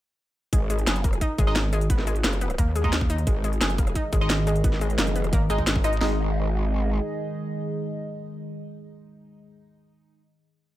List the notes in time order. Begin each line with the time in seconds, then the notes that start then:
0.53 G#1 G#3, kick, closed hi-hat
0.70 G#3, cross-stick, closed hi-hat, cabasa
0.79 closed hi-hat
0.87 F#1 G#4, snare, closed hi-hat
0.96 closed hi-hat
1.04 A#3, kick, closed hi-hat, cabasa
1.13 cross-stick, closed hi-hat
1.21 D#4, kick, closed hi-hat
1.38 G#1 G#3, kick, closed hi-hat, cabasa
1.47 G#3 D#4 D#5, cross-stick, cabasa
1.56 G#3, snare, closed hi-hat
1.73 G#3, cross-stick, closed hi-hat, cabasa
1.81 closed hi-hat
1.90 G#1 B3, kick, closed hi-hat
1.99 snare
2.07 G#3, cross-stick, closed hi-hat, cabasa
2.16 closed hi-hat
2.24 F#1 A#3, snare, closed hi-hat
2.33 closed hi-hat
2.41 B3, closed hi-hat, cabasa
2.50 cross-stick, closed hi-hat
2.58 D#2 A#3, kick, closed hi-hat
2.76 G#3, closed hi-hat, cabasa
2.84 G#3 D#4 D#5, kick, cabasa
2.93 G#3, snare, closed hi-hat
3.01 kick, cross-stick
3.10 D#4, cross-stick, closed hi-hat, cabasa
3.18 closed hi-hat
3.27 G#1 D#3 G#3 G#4 D#5, kick, closed hi-hat
3.44 G#3, cross-stick, closed hi-hat, cabasa
3.53 closed hi-hat
3.61 F#1 G#4, snare, closed hi-hat
3.70 closed hi-hat
3.78 A#3, kick, closed hi-hat, cabasa
3.87 cross-stick, closed hi-hat
3.95 D#4, kick, closed hi-hat
4.13 G#1 G#3, kick, closed hi-hat, cabasa
4.21 G#3 D#4 D#5, cross-stick, cabasa
4.30 G#3, snare, closed hi-hat
4.47 G#3, cross-stick, closed hi-hat, cabasa
4.56 closed hi-hat
4.64 G#1 B3, kick, closed hi-hat
4.73 snare
4.81 G#3, cross-stick, closed hi-hat, cabasa
4.90 closed hi-hat
4.98 F#1 A#3, snare, closed hi-hat
5.07 closed hi-hat
5.16 B3, closed hi-hat, cabasa
5.24 cross-stick, closed hi-hat
5.33 G#1 A#3, kick, closed hi-hat
5.50 G#1 G#3 D#4 D#5, closed hi-hat, cabasa
5.58 kick, cabasa
5.67 G#3, snare, closed hi-hat
5.76 kick, cross-stick
5.84 G#3 D#4 D#5, cross-stick, closed hi-hat, cabasa
5.93 closed hi-hat
6.01 G#1 D#3 G#3 D#4 G#4 D#5, snare